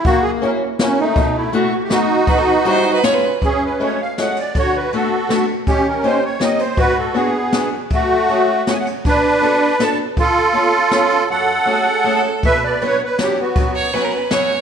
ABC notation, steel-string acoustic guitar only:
X:1
M:3/4
L:1/8
Q:1/4=160
K:Bphr
V:1 name="Steel-string acoustic guitar"
F,,2 [^A,^CEF] z [A,CEF] z | B,,2 [A,B,EF] z [A,B,^DF] z | E,,2 [G,B,EF] z [^G,B,^C^E] z | [K:F#m] F,,2 [G,A,CF] z [G,A,CF] z |
D,2 [A,B,DF] z [A,B,DF] z | ^D,2 [^A,C^D=G] z [A,CDG] z | G,,2 [B,DFG] z [B,DFG] z | F,,2 [A,CFG] z [A,CFG] z |
B,,2 [B,DFA] z [B,DFA] z | C,2 [B,C^EG] z [B,CEG] z | F,,2 [A,CFG] z [A,CFG] z | [K:Bm] B,,2 [F,B,DF] z [F,B,DF] z |
F,,2 [F,B,CF] z [F,B,CF] z |]